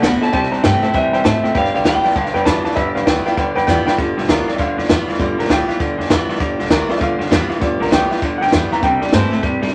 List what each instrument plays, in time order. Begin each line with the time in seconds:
Already playing: steel-string acoustic guitar A2
0.02 upright bass D2, clean electric guitar D3 B3, steel-string acoustic guitar D3 A3 C4 F#4, upright piano A4 D5 F#5, kick, snare, hi-hat pedal
0.21 clean electric guitar D3 B3 A5, steel-string acoustic guitar C4 F#4, upright piano A4 D5 E5, muted upright bass stroke, snare
0.32 upright bass C2, clean electric guitar C3 G3 A5, steel-string acoustic guitar C3, upright piano C5 E5 G5, kick, snare
0.43 snare
0.52 upright bass E2, clean electric guitar C3 G3, upright piano C5 E5 A#5, snare
0.63 upright bass G2, clean electric guitar C3 A3 G5, steel-string acoustic guitar E3 A#3 C4 E4, upright piano C5 E5 G5, kick, snare, hi-hat pedal
0.82 clean electric guitar C3 A3, steel-string acoustic guitar C4 E4, upright piano C5 E5 A5, muted upright bass stroke, snare
0.94 upright bass G2, clean electric guitar C3 G3 E5, steel-string acoustic guitar E3, upright piano C5 E5 G5, kick, snare
1.13 upright bass A#2, clean electric guitar C3 G3, upright piano C5 E5 G5, snare
1.24 upright bass A2, clean electric guitar C3 A3 E5, steel-string acoustic guitar F3, upright piano C5 E5 A5, kick, snare, hi-hat pedal
1.43 clean electric guitar C3 A3, upright piano C5 E5 G5, muted upright bass stroke, snare
1.55 upright bass G1, clean electric guitar G2 D3 F5, steel-string acoustic guitar G3, upright piano B4 D5 G5, kick, snare
1.65 snare
1.74 upright bass B1, clean electric guitar G2 D3 F5, upright piano B4 D5 G5, snare
1.84 upright bass D2, clean electric guitar G2 E3 G5, steel-string acoustic guitar G3 B3 F4, upright piano B4 D5 G5, kick, snare, hi-hat pedal
2.03 clean electric guitar G2 E3, steel-string acoustic guitar B3 F4, upright piano B4 D5 G5, muted upright bass stroke, snare
2.10 snare
2.15 upright bass D2, clean electric guitar G2 D3, steel-string acoustic guitar D3, upright piano B4 D5 A5, kick, snare
2.25 snare
2.34 upright bass F2, clean electric guitar G2 D3, upright piano B4 D5 G5, snare
2.45 upright bass E2, clean electric guitar G2 E3, steel-string acoustic guitar G3 B3 F4, upright piano B4 D5 A5, kick, snare, hi-hat pedal
2.65 clean electric guitar G2 E3, steel-string acoustic guitar B3 F4, upright piano B4 D5 A5, muted upright bass stroke, snare
2.71 snare
2.75 upright bass G1, clean electric guitar G2 D3, steel-string acoustic guitar G3, upright piano B4 D5 E5, kick, snare
2.95 upright bass B1, clean electric guitar G2 D3, upright piano B4 D5 F5, snare
3.06 upright bass D2, clean electric guitar G2 E3, steel-string acoustic guitar G3 B3 F4, upright piano B4 D5 G5, kick, snare, hi-hat pedal
3.25 clean electric guitar G2 E3, steel-string acoustic guitar B3 F4, upright piano B4 D5 G5, snare
3.37 upright bass D2, clean electric guitar G2 D3, steel-string acoustic guitar D3, upright piano B4 D5 G5, kick, snare
3.55 upright bass F2, clean electric guitar G2 D3, upright piano B4 D5 G5, snare
3.67 upright bass E2, clean electric guitar G2 E3, steel-string acoustic guitar G3 B3 F4, upright piano B4 D5 G5, kick, snare, hi-hat pedal
3.86 clean electric guitar G2 E3, steel-string acoustic guitar B3 F4, upright piano B4 D5 G5, muted upright bass stroke, snare
3.97 upright bass G1, clean electric guitar G2 D3, steel-string acoustic guitar G3, upright piano A3 B3 F4, kick, snare
4.17 upright bass B1, clean electric guitar G2 D3, snare
4.24 snare
4.29 upright bass D2, clean electric guitar G2 E3, steel-string acoustic guitar G3 B3 F4, upright piano A#4, kick, snare, hi-hat pedal
4.48 clean electric guitar G2 E3, steel-string acoustic guitar B3 F4, upright piano D5, muted upright bass stroke, snare
4.56 upright bass D2, clean electric guitar G2 D3, steel-string acoustic guitar D3, upright piano E5, kick, snare
4.60 upright piano F5
4.78 upright bass F2, clean electric guitar G2 D3, snare
4.84 snare
4.88 upright bass E2, clean electric guitar G2 E3, steel-string acoustic guitar G3 B3 F4, kick, snare, hi-hat pedal
5.08 clean electric guitar G2 E3, steel-string acoustic guitar B3 F4, muted upright bass stroke, snare
5.14 snare
5.18 upright bass G1, clean electric guitar G2 D3, steel-string acoustic guitar G3, upright piano A3 B3 F4 D5, kick, snare
5.38 upright bass B1, clean electric guitar G2 D3, upright piano A#4, snare
5.44 snare
5.49 upright bass D2, clean electric guitar G2 E3, steel-string acoustic guitar G3 B3 F4, upright piano G4, kick, snare, hi-hat pedal
5.68 clean electric guitar G2 E3, steel-string acoustic guitar B3 F4, muted upright bass stroke, snare
5.80 upright bass D2, clean electric guitar G2 D3, steel-string acoustic guitar D3, kick, snare
5.98 upright bass F2, clean electric guitar G2 D3, snare
6.05 snare
6.10 upright bass E2, clean electric guitar G2 E3, steel-string acoustic guitar G3 B3 F4, kick, snare, hi-hat pedal
6.29 clean electric guitar G2 E3, muted upright bass stroke, snare
6.35 snare
6.40 upright bass G1, clean electric guitar G2 D3, steel-string acoustic guitar G3, kick, snare
6.59 upright bass B1, clean electric guitar G2 D3, snare
6.65 snare
6.70 upright bass D2, clean electric guitar G2 E3, steel-string acoustic guitar G3 B3 F4, upright piano A#4, kick, snare, hi-hat pedal
6.88 clean electric guitar G2 E3, upright piano A3 B3 F4 D5, steel-string acoustic guitar B3 F4, muted upright bass stroke, snare
6.96 upright piano E5, snare
7.00 upright bass D2, clean electric guitar G2 D3, steel-string acoustic guitar D3, upright piano F5, kick, snare
7.19 upright bass F2, clean electric guitar G2 D3, snare
7.26 snare
7.31 upright bass E2, clean electric guitar G2 E3, steel-string acoustic guitar G3 B3 F4, kick, snare, hi-hat pedal
7.49 clean electric guitar G2 E3, steel-string acoustic guitar B3 F4, muted upright bass stroke, snare
7.60 upright bass G1, clean electric guitar G2 D3, steel-string acoustic guitar G3, upright piano A3 B3 F4 D5, kick, snare
7.79 upright bass B1, clean electric guitar G2 D3, upright piano A#4, snare
7.87 clean electric guitar G2, steel-string acoustic guitar G3, snare
7.91 upright bass D2, clean electric guitar E3, steel-string acoustic guitar B3 F4, upright piano B3 G4, kick, snare, hi-hat pedal
8.10 clean electric guitar G2 E3, steel-string acoustic guitar B3 F4, muted upright bass stroke, snare
8.17 snare
8.22 upright bass D2, clean electric guitar G2 D3, steel-string acoustic guitar D3, kick, snare
8.38 upright bass F2, clean electric guitar G2 D3, upright piano F#5, snare
8.42 upright piano G5
8.47 steel-string acoustic guitar G3, snare
8.52 upright bass E2, clean electric guitar G2 E3, steel-string acoustic guitar B3 F4, kick, snare, hi-hat pedal
8.71 clean electric guitar G2 E3, steel-string acoustic guitar B3 F4, upright piano A#5, muted upright bass stroke, snare
8.82 upright bass C2, clean electric guitar C3 G3, steel-string acoustic guitar C3, upright piano A#3 D4 E4 G5, kick, snare
9.01 upright bass E2, clean electric guitar C3 G3, upright piano D5, snare
9.07 snare
9.12 upright bass G2, clean electric guitar C3 A3, steel-string acoustic guitar E3 A#3 C4 E4, upright piano E4 C5, kick, snare, hi-hat pedal
9.31 clean electric guitar C3 A3, steel-string acoustic guitar C4 E4, muted upright bass stroke, snare
9.42 upright bass G2, steel-string acoustic guitar G2, clean electric guitar C3 G3, kick, snare
9.62 upright bass A#2, clean electric guitar C3 G3, snare
9.68 snare